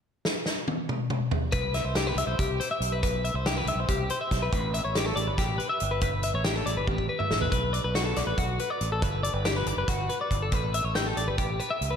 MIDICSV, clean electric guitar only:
0, 0, Header, 1, 2, 480
1, 0, Start_track
1, 0, Tempo, 427655
1, 52, Time_signature, 7, 3, 24, 8
1, 13428, End_track
2, 0, Start_track
2, 0, Title_t, "Clean electric guitar"
2, 0, Program_c, 0, 27
2, 1711, Note_on_c, 0, 71, 81
2, 1956, Note_off_c, 0, 71, 0
2, 1958, Note_on_c, 0, 76, 64
2, 2075, Note_off_c, 0, 76, 0
2, 2075, Note_on_c, 0, 72, 66
2, 2198, Note_off_c, 0, 72, 0
2, 2204, Note_on_c, 0, 67, 77
2, 2324, Note_off_c, 0, 67, 0
2, 2324, Note_on_c, 0, 71, 61
2, 2442, Note_off_c, 0, 71, 0
2, 2448, Note_on_c, 0, 76, 68
2, 2546, Note_off_c, 0, 76, 0
2, 2551, Note_on_c, 0, 72, 49
2, 2675, Note_off_c, 0, 72, 0
2, 2681, Note_on_c, 0, 67, 61
2, 2918, Note_on_c, 0, 72, 62
2, 2920, Note_off_c, 0, 67, 0
2, 3038, Note_off_c, 0, 72, 0
2, 3042, Note_on_c, 0, 76, 62
2, 3280, Note_off_c, 0, 76, 0
2, 3281, Note_on_c, 0, 71, 60
2, 3386, Note_off_c, 0, 71, 0
2, 3399, Note_on_c, 0, 71, 75
2, 3638, Note_off_c, 0, 71, 0
2, 3644, Note_on_c, 0, 76, 67
2, 3766, Note_off_c, 0, 76, 0
2, 3766, Note_on_c, 0, 72, 65
2, 3881, Note_off_c, 0, 72, 0
2, 3889, Note_on_c, 0, 67, 74
2, 4013, Note_off_c, 0, 67, 0
2, 4013, Note_on_c, 0, 71, 59
2, 4124, Note_off_c, 0, 71, 0
2, 4135, Note_on_c, 0, 76, 64
2, 4264, Note_off_c, 0, 76, 0
2, 4264, Note_on_c, 0, 72, 49
2, 4365, Note_on_c, 0, 67, 67
2, 4370, Note_off_c, 0, 72, 0
2, 4600, Note_off_c, 0, 67, 0
2, 4608, Note_on_c, 0, 72, 63
2, 4721, Note_off_c, 0, 72, 0
2, 4725, Note_on_c, 0, 76, 66
2, 4960, Note_off_c, 0, 76, 0
2, 4967, Note_on_c, 0, 71, 67
2, 5072, Note_off_c, 0, 71, 0
2, 5085, Note_on_c, 0, 71, 74
2, 5320, Note_off_c, 0, 71, 0
2, 5321, Note_on_c, 0, 76, 69
2, 5435, Note_off_c, 0, 76, 0
2, 5439, Note_on_c, 0, 73, 65
2, 5557, Note_off_c, 0, 73, 0
2, 5571, Note_on_c, 0, 67, 73
2, 5680, Note_off_c, 0, 67, 0
2, 5680, Note_on_c, 0, 69, 54
2, 5789, Note_on_c, 0, 74, 72
2, 5798, Note_off_c, 0, 69, 0
2, 5921, Note_off_c, 0, 74, 0
2, 5921, Note_on_c, 0, 71, 58
2, 6038, Note_off_c, 0, 71, 0
2, 6041, Note_on_c, 0, 67, 74
2, 6264, Note_on_c, 0, 71, 58
2, 6278, Note_off_c, 0, 67, 0
2, 6388, Note_off_c, 0, 71, 0
2, 6392, Note_on_c, 0, 76, 63
2, 6634, Note_off_c, 0, 76, 0
2, 6636, Note_on_c, 0, 71, 63
2, 6746, Note_off_c, 0, 71, 0
2, 6759, Note_on_c, 0, 71, 68
2, 6998, Note_off_c, 0, 71, 0
2, 7000, Note_on_c, 0, 76, 66
2, 7118, Note_off_c, 0, 76, 0
2, 7126, Note_on_c, 0, 73, 61
2, 7242, Note_off_c, 0, 73, 0
2, 7243, Note_on_c, 0, 67, 70
2, 7361, Note_off_c, 0, 67, 0
2, 7361, Note_on_c, 0, 69, 55
2, 7476, Note_on_c, 0, 74, 66
2, 7479, Note_off_c, 0, 69, 0
2, 7597, Note_off_c, 0, 74, 0
2, 7600, Note_on_c, 0, 71, 56
2, 7718, Note_off_c, 0, 71, 0
2, 7718, Note_on_c, 0, 67, 67
2, 7955, Note_off_c, 0, 67, 0
2, 7959, Note_on_c, 0, 71, 58
2, 8071, Note_on_c, 0, 76, 63
2, 8079, Note_off_c, 0, 71, 0
2, 8315, Note_off_c, 0, 76, 0
2, 8325, Note_on_c, 0, 71, 66
2, 8424, Note_off_c, 0, 71, 0
2, 8438, Note_on_c, 0, 71, 74
2, 8678, Note_off_c, 0, 71, 0
2, 8678, Note_on_c, 0, 74, 64
2, 8800, Note_off_c, 0, 74, 0
2, 8804, Note_on_c, 0, 71, 64
2, 8923, Note_off_c, 0, 71, 0
2, 8926, Note_on_c, 0, 66, 82
2, 9037, Note_off_c, 0, 66, 0
2, 9041, Note_on_c, 0, 69, 58
2, 9162, Note_off_c, 0, 69, 0
2, 9168, Note_on_c, 0, 74, 65
2, 9278, Note_off_c, 0, 74, 0
2, 9282, Note_on_c, 0, 71, 59
2, 9403, Note_off_c, 0, 71, 0
2, 9410, Note_on_c, 0, 66, 61
2, 9647, Note_off_c, 0, 66, 0
2, 9652, Note_on_c, 0, 71, 64
2, 9769, Note_off_c, 0, 71, 0
2, 9769, Note_on_c, 0, 74, 65
2, 10007, Note_off_c, 0, 74, 0
2, 10015, Note_on_c, 0, 69, 60
2, 10127, Note_off_c, 0, 69, 0
2, 10127, Note_on_c, 0, 71, 79
2, 10359, Note_off_c, 0, 71, 0
2, 10364, Note_on_c, 0, 74, 60
2, 10480, Note_off_c, 0, 74, 0
2, 10480, Note_on_c, 0, 71, 65
2, 10604, Note_off_c, 0, 71, 0
2, 10611, Note_on_c, 0, 67, 75
2, 10730, Note_off_c, 0, 67, 0
2, 10736, Note_on_c, 0, 71, 62
2, 10859, Note_off_c, 0, 71, 0
2, 10859, Note_on_c, 0, 74, 68
2, 10974, Note_off_c, 0, 74, 0
2, 10980, Note_on_c, 0, 71, 62
2, 11089, Note_on_c, 0, 66, 69
2, 11095, Note_off_c, 0, 71, 0
2, 11330, Note_off_c, 0, 66, 0
2, 11330, Note_on_c, 0, 71, 61
2, 11451, Note_off_c, 0, 71, 0
2, 11462, Note_on_c, 0, 74, 69
2, 11697, Note_off_c, 0, 74, 0
2, 11701, Note_on_c, 0, 69, 59
2, 11828, Note_off_c, 0, 69, 0
2, 11828, Note_on_c, 0, 71, 81
2, 12059, Note_on_c, 0, 76, 61
2, 12061, Note_off_c, 0, 71, 0
2, 12175, Note_off_c, 0, 76, 0
2, 12175, Note_on_c, 0, 73, 62
2, 12295, Note_off_c, 0, 73, 0
2, 12296, Note_on_c, 0, 67, 74
2, 12415, Note_off_c, 0, 67, 0
2, 12418, Note_on_c, 0, 69, 63
2, 12537, Note_off_c, 0, 69, 0
2, 12538, Note_on_c, 0, 74, 61
2, 12656, Note_off_c, 0, 74, 0
2, 12659, Note_on_c, 0, 71, 58
2, 12772, Note_off_c, 0, 71, 0
2, 12777, Note_on_c, 0, 67, 68
2, 13015, Note_off_c, 0, 67, 0
2, 13015, Note_on_c, 0, 71, 62
2, 13136, Note_off_c, 0, 71, 0
2, 13138, Note_on_c, 0, 76, 66
2, 13363, Note_on_c, 0, 71, 64
2, 13377, Note_off_c, 0, 76, 0
2, 13428, Note_off_c, 0, 71, 0
2, 13428, End_track
0, 0, End_of_file